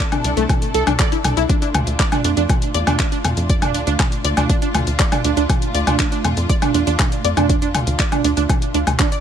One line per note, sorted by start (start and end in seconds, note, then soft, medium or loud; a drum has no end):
0.00 1.45 C3 medium
0.00 1.45 C4 medium
0.00 9.20 D4 medium
0.00 1.45 E4 medium
0.00 1.45 A4 medium
0.12 0.21 D4 medium
0.12 closed hi-hat soft
0.12 mid tom medium
0.12 low woodblock medium
0.24 0.34 C2 loud
0.24 0.30 D4 medium
0.24 open hi-hat loud
0.37 0.47 C2 medium
0.37 0.43 A3 loud
0.37 closed hi-hat soft
0.49 kick loud
0.49 closed hi-hat medium
0.49 mid tom loud
0.49 low woodblock medium
0.62 closed hi-hat soft
0.74 0.84 C2 medium
0.74 0.83 A4 loud
0.74 open hi-hat loud
0.87 0.97 C2 medium
0.87 0.93 D4 loud
0.87 closed hi-hat soft
0.87 mid tom medium
0.87 low woodblock medium
0.99 1.08 D5 loud
0.99 kick loud
0.99 clap loud
0.99 closed hi-hat medium
1.12 1.18 E4 medium
1.12 closed hi-hat soft
1.24 1.34 C2 loud
1.24 open hi-hat loud
1.24 mid tom medium
1.24 low woodblock medium
1.37 1.47 C2 medium
1.37 1.43 E4 loud
1.37 closed hi-hat soft
1.49 9.20 A3 medium
1.49 1.55 D4 medium
1.49 9.20 F4 medium
1.49 kick loud
1.49 closed hi-hat medium
1.62 1.68 D4 medium
1.62 closed hi-hat soft
1.74 1.84 D2 loud
1.74 open hi-hat loud
1.74 mid tom loud
1.74 low woodblock medium
1.87 1.97 D2 medium
1.87 closed hi-hat soft
1.99 2.03 D5 loud
1.99 kick loud
1.99 clap loud
1.99 closed hi-hat medium
2.12 2.21 D4 medium
2.12 closed hi-hat soft
2.12 mid tom loud
2.12 low woodblock medium
2.24 2.34 F2 loud
2.24 2.31 D4 medium
2.24 open hi-hat loud
2.37 2.47 F2 medium
2.37 2.43 D4 medium
2.37 closed hi-hat soft
2.49 kick loud
2.49 closed hi-hat medium
2.49 mid tom loud
2.49 low woodblock medium
2.62 closed hi-hat soft
2.74 2.84 E2 medium
2.74 2.78 D5 loud
2.74 open hi-hat loud
2.87 2.97 E2 medium
2.87 2.96 D4 medium
2.87 closed hi-hat soft
2.87 mid tom medium
2.87 low woodblock medium
2.99 3.06 D4 medium
2.99 kick loud
2.99 clap loud
2.99 closed hi-hat medium
3.12 3.18 D4 medium
3.12 closed hi-hat soft
3.24 3.34 F2 medium
3.24 open hi-hat loud
3.24 mid tom loud
3.24 low woodblock medium
3.37 3.76 F2 medium
3.37 closed hi-hat soft
3.50 3.53 D5 loud
3.50 kick loud
3.50 closed hi-hat medium
3.62 3.71 D4 medium
3.62 closed hi-hat soft
3.62 mid tom medium
3.62 low woodblock medium
3.74 3.84 D2 loud
3.74 3.80 D4 medium
3.74 open hi-hat loud
3.87 3.97 D2 medium
3.87 3.93 D4 medium
3.87 closed hi-hat soft
4.00 kick loud
4.00 clap loud
4.00 closed hi-hat medium
4.00 mid tom medium
4.00 low woodblock medium
4.12 closed hi-hat soft
4.24 4.34 D2 loud
4.24 4.28 D5 loud
4.24 open hi-hat loud
4.37 4.47 D2 medium
4.37 4.46 D4 medium
4.37 closed hi-hat soft
4.37 mid tom medium
4.37 low woodblock medium
4.49 4.55 D4 medium
4.49 kick loud
4.49 closed hi-hat medium
4.62 4.68 D4 medium
4.62 closed hi-hat soft
4.75 4.84 D2 medium
4.75 open hi-hat loud
4.75 mid tom medium
4.75 low woodblock medium
4.87 4.97 D2 medium
4.87 closed hi-hat soft
4.99 5.03 D5 loud
4.99 kick loud
4.99 clap loud
4.99 closed hi-hat medium
5.12 5.21 D4 medium
5.12 closed hi-hat soft
5.12 mid tom loud
5.12 low woodblock medium
5.24 5.34 D2 medium
5.24 5.30 D4 medium
5.24 open hi-hat loud
5.37 5.47 D2 medium
5.37 5.43 D4 medium
5.37 closed hi-hat soft
5.50 kick loud
5.50 closed hi-hat medium
5.50 mid tom loud
5.50 low woodblock medium
5.62 closed hi-hat soft
5.74 5.84 D2 loud
5.74 5.78 D5 loud
5.74 open hi-hat loud
5.87 5.97 D2 medium
5.87 5.96 D4 medium
5.87 closed hi-hat soft
5.87 mid tom loud
5.87 low woodblock medium
6.00 6.05 D4 medium
6.00 kick loud
6.00 clap loud
6.00 closed hi-hat medium
6.12 6.18 D4 medium
6.12 closed hi-hat soft
6.24 6.34 F2 medium
6.24 open hi-hat loud
6.24 mid tom medium
6.24 low woodblock soft
6.37 6.47 F2 medium
6.37 closed hi-hat soft
6.49 6.53 D5 loud
6.49 kick loud
6.49 closed hi-hat medium
6.62 6.71 D4 medium
6.62 closed hi-hat soft
6.62 mid tom loud
6.62 low woodblock medium
6.74 6.84 E2 medium
6.74 6.81 D4 medium
6.74 open hi-hat loud
6.87 6.97 E2 medium
6.87 6.93 D4 medium
6.87 closed hi-hat soft
7.00 kick loud
7.00 clap loud
7.00 closed hi-hat medium
7.00 mid tom medium
7.00 low woodblock soft
7.12 closed hi-hat soft
7.24 7.34 F2 medium
7.24 7.28 D5 loud
7.24 open hi-hat loud
7.37 7.76 F2 medium
7.37 7.46 D4 medium
7.37 closed hi-hat soft
7.37 mid tom loud
7.37 low woodblock medium
7.50 7.56 D4 medium
7.50 kick loud
7.50 closed hi-hat medium
7.62 7.68 D4 medium
7.62 closed hi-hat soft
7.74 7.84 D2 loud
7.74 open hi-hat loud
7.74 mid tom loud
7.74 low woodblock soft
7.87 7.97 D2 medium
7.87 closed hi-hat soft
8.00 8.03 D5 loud
8.00 kick loud
8.00 clap loud
8.00 closed hi-hat medium
8.12 8.21 D4 medium
8.12 closed hi-hat soft
8.12 mid tom medium
8.12 low woodblock medium
8.24 8.34 D2 loud
8.24 8.30 D4 medium
8.24 open hi-hat loud
8.37 8.47 D2 medium
8.37 8.43 D4 medium
8.37 closed hi-hat soft
8.49 kick loud
8.49 closed hi-hat medium
8.49 mid tom medium
8.49 low woodblock medium
8.62 closed hi-hat soft
8.74 8.84 D2 medium
8.74 8.78 D4 loud
8.74 open hi-hat loud
8.87 8.97 D2 medium
8.87 closed hi-hat soft
8.87 mid tom medium
8.87 low woodblock medium
8.99 9.08 D4 medium
8.99 kick loud
8.99 clap loud
8.99 closed hi-hat medium
9.12 9.18 D5 medium
9.12 closed hi-hat soft